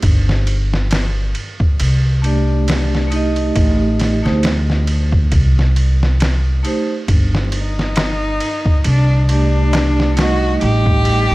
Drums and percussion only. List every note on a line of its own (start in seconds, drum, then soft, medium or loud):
0.02 kick loud
0.02 ride medium
0.29 snare medium
0.47 ride medium
0.74 snare medium
0.91 snare loud
0.91 ride medium
1.35 ride medium
1.60 kick loud
1.80 ride medium
2.24 ride medium
2.68 snare loud
2.68 ride medium
2.95 snare medium
3.12 ride medium
3.36 ride soft
3.56 kick loud
3.56 ride medium
3.99 snare soft
3.99 ride medium
4.26 snare soft
4.43 snare loud
4.43 ride medium
4.70 snare soft
4.87 ride medium
5.12 kick medium
5.32 kick loud
5.32 ride medium
5.59 snare soft
5.76 ride medium
6.03 snare soft
6.20 snare loud
6.20 ride medium
6.65 ride medium
7.08 kick loud
7.08 ride medium
7.35 snare medium
7.52 ride medium
7.79 snare medium
7.96 snare loud
7.96 ride medium
7.96 darbuka tek medium
8.40 ride medium
8.65 kick loud
8.84 ride medium
9.29 ride medium
9.73 snare loud
9.73 ride medium
9.73 darbuka tek medium
10.00 snare soft
10.17 snare loud
10.17 ride medium
10.61 ride medium
10.86 kick medium
11.05 ride medium